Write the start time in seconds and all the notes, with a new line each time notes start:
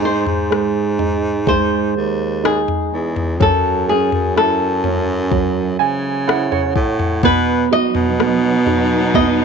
Already playing: G#2 G#3
0.02 D#4 C5
0.27 G#2, floor tom
0.51 G#3, cross-stick
0.99 D#4, floor tom
1.47 G#3 C5, kick, floor tom
1.96 D#2
2.44 D#4 G#4, cross-stick
2.68 floor tom
2.92 E2
3.16 floor tom
3.40 F#2 F#3 A4, kick, floor tom
3.88 C#4 G#4
4.12 F#2, floor tom
4.36 E4 A4, cross-stick
4.84 C#4, floor tom
5.31 F#3, kick, floor tom
5.79 C#3 G#5
6.28 E4 F#5, cross-stick
6.52 C#5, floor tom
6.76 A2, kick
6.99 floor tom
7.23 B2 F#3 B3 D#4 B4, kick, floor tom
7.71 F#4 D#5
7.95 B2, floor tom
8.19 B3, cross-stick
8.66 F#4, floor tom
9.14 B3 D#5, kick, floor tom